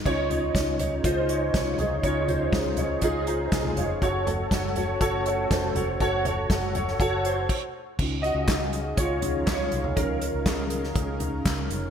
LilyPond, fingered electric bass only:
\new Staff \with { instrumentName = "Fingered electric bass" } { \clef bass \time 4/4 \key des \major \tempo 4 = 121 des,4 des,4 des,4 c,8 c,8 | des,4 des,4 des,4 c,8 f,,8 | ges,,4 ges,,4 ges,,4 f,,8 f,,8 | ges,,4 ges,,4 ges,,4 r4 |
des,8. des,4~ des,16 des,4 des,8 c,8 | des,8. des,4~ des,16 des,4 des,8 f,,8 | }